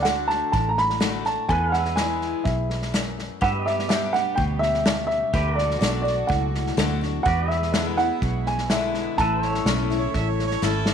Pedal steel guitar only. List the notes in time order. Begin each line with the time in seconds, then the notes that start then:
Already playing: A4 D5 F#5
1.50 A4 B4 F#5
1.70 G#4
1.77 E5
3.42 G4 B4 E5
3.68 D5
5.34 G4 B4 D5
5.54 F#4
5.60 A4
7.26 F#4 B4 D5
7.51 G#4 E5
9.20 A4 B4 E5
9.46 C#5